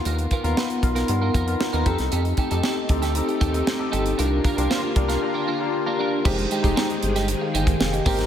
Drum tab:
CC |----------------|----------------|----------------|x---------------|
HH |xxxx-xxxx-xx-xxx|xxxx--xxxxxx--xx|x-xx--xx--------|-xxx-xxxx-xx-xox|
SD |----o--o----o--o|----o--o----o---|----o--o--------|----o--o----o--o|
BD |--o---o---o---o-|--o---o---o-----|--o---o---------|o--o-------o--o-|